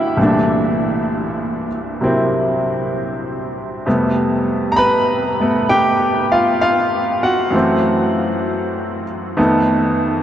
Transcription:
0.00 0.17 G2 soft
0.00 0.18 D3 soft
0.00 0.19 G3 soft
0.00 0.18 A3 soft
0.00 0.19 B3 medium
0.00 1.68 E4 medium
0.00 0.20 F#4 medium
0.00 0.20 G4 medium
0.00 1.67 E5 medium
0.00 0.20 F5 medium
0.00 0.20 F#5 medium
0.00 0.20 G5 medium
0.17 3.85 C2 soft
0.17 3.86 G2 soft
0.17 3.86 E3 soft
0.17 3.85 A3 soft
0.21 3.87 A#2 soft
0.21 3.88 D4 soft
2.01 3.85 C3 soft
2.01 3.86 F#3 soft
2.01 3.86 A#3 soft
2.01 3.87 C4 soft
2.01 3.87 E4 soft
3.86 7.54 F2 soft
3.86 7.54 C3 soft
3.86 7.54 G3 soft
3.86 5.39 A3 soft
3.86 5.40 B3 soft
4.72 4.77 A#5 medium
4.76 5.66 B4 medium
4.76 5.72 B5 medium
5.40 7.52 A3 soft
5.40 7.55 B3 medium
5.69 6.27 G4 medium
5.69 6.33 G5 medium
6.32 6.60 F4 medium
6.32 6.60 F5 medium
6.61 6.76 F4 medium
6.61 6.75 F5 medium
7.23 9.03 F#4 medium
7.23 9.03 F#5 medium
7.50 9.36 F#2 soft
7.50 9.37 E3 soft
7.50 9.36 A3 soft
7.55 9.38 C4 soft
9.37 10.23 F2 medium
9.37 10.23 D#3 medium
9.37 10.23 A3 medium
9.37 10.23 B3 medium

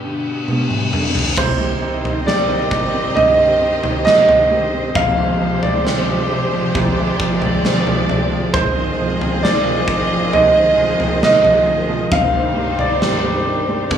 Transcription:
0.00 1.34 G2 soft
0.00 1.36 B2 medium
0.00 0.92 D3 soft
0.00 1.34 G3 soft
0.00 1.34 D4 soft
0.00 1.34 G4 medium
0.00 0.88 B4 medium
0.00 reverse cymbal medium
0.48 1.35 B3 soft
0.48 high tom soft
0.71 mid tom soft
0.93 1.36 D3 soft
0.93 mid tom medium
1.15 floor tom medium
1.36 4.92 C2 medium
1.36 4.92 C3 medium
1.36 4.93 D#3 medium
1.36 4.93 G3 medium
1.36 4.91 C4 loud
1.36 4.93 D#4 medium
1.36 4.91 G4 medium
1.36 2.30 C5 medium
1.36 6.71 C5 medium
1.36 4.91 D#5 loud
1.36 kick loud
1.36 floor tom loud
1.36 crash loud
1.60 2.70 G3 medium
1.82 2.48 C4 medium
2.05 3.80 D#4 medium
2.05 floor tom medium
2.27 4.02 G4 medium
2.27 3.19 D5 medium
2.27 snare loud
2.49 2.92 C4 medium
2.71 3.15 G3 medium
2.71 kick medium
2.94 3.59 C4 medium
3.15 4.92 G2 medium
3.15 3.38 G3 medium
3.15 4.01 D#5 medium
3.15 floor tom medium
3.39 4.49 G3 soft
3.61 4.27 C4 medium
3.83 4.92 D#4 medium
3.83 floor tom medium
4.05 4.93 G4 medium
4.05 4.98 D#5 loud
4.05 snare loud
4.29 4.73 C4 medium
4.29 floor tom medium
4.51 4.94 G3 medium
4.74 4.95 C4 medium
4.95 8.50 F1 medium
4.95 8.50 F2 medium
4.95 8.50 F3 medium
4.95 8.50 G#3 loud
4.95 12.08 G#3 medium
4.95 8.50 G4 loud
4.95 8.51 G4 medium
4.95 8.49 C5 loud
4.95 5.59 F5 loud
4.95 kick loud
4.95 floor tom loud
5.18 6.29 C3 medium
5.41 6.07 F3 medium
5.63 7.38 G#3 medium
5.63 8.05 D5 medium
5.63 floor tom medium
5.85 7.60 C4 medium
5.85 snare loud
6.08 6.52 F3 medium
6.30 6.74 C3 medium
6.53 7.19 F3 medium
6.75 8.50 C2 medium
6.75 6.97 C3 medium
6.75 8.52 D5 medium
6.75 kick loud
6.75 floor tom medium
6.98 8.07 C3 medium
7.20 7.85 F3 medium
7.20 kick medium
7.42 8.51 G#3 medium
7.42 floor tom medium
7.64 8.51 C4 medium
7.64 snare loud
7.87 8.30 F3 medium
7.87 floor tom medium
8.08 8.52 C3 medium
8.08 floor tom medium
8.32 8.53 F3 medium
8.53 12.08 G#1 medium
8.53 12.08 G#2 medium
8.53 13.87 D#3 medium
8.53 12.07 C4 loud
8.53 12.09 F4 medium
8.53 12.08 G#4 loud
8.53 9.46 C5 medium
8.53 12.09 C5 medium
8.53 12.08 D#5 loud
8.53 kick loud
8.53 floor tom loud
8.76 9.86 D#3 medium
8.99 9.64 F3 medium
9.21 10.96 C4 medium
9.21 floor tom medium
9.43 11.18 D#4 medium
9.43 10.35 D5 medium
9.43 snare loud
9.66 10.09 F3 medium
9.88 10.32 D#3 medium
9.88 kick medium
10.11 10.76 F3 medium
10.33 12.08 D#2 medium
10.33 10.54 D#3 medium
10.33 11.21 D#5 medium
10.33 floor tom medium
10.55 11.65 D#3 medium
10.78 11.43 F3 medium
11.00 12.09 C4 medium
11.00 floor tom medium
11.22 12.09 D#4 medium
11.22 12.15 D#5 loud
11.22 snare loud
11.44 11.88 F3 medium
11.44 floor tom medium
11.66 12.10 D#3 medium
11.89 12.11 F3 medium
12.12 13.87 G1 medium
12.12 13.87 G2 medium
12.12 13.89 G2 medium
12.12 13.88 G3 loud
12.12 13.89 C4 medium
12.12 13.88 D#4 medium
12.12 13.98 G4 medium
12.12 13.89 C5 medium
12.12 13.88 C5 loud
12.12 12.81 F5 loud
12.12 kick loud
12.12 floor tom loud
12.34 13.45 D#3 medium
12.56 13.22 G3 medium
12.79 13.88 D#4 soft
12.79 13.98 D5 medium
12.79 floor tom medium
13.02 13.88 G4 medium
13.02 snare loud
13.24 13.67 G3 soft
13.46 13.90 D#3 medium
13.68 13.90 G3 medium
13.91 13.98 G1 medium
13.91 13.98 G2 medium
13.91 13.98 D3 medium
13.91 13.98 B3 medium
13.91 13.98 G4 medium
13.91 13.98 B4 medium
13.91 13.98 D5 medium
13.91 kick loud
13.91 floor tom medium

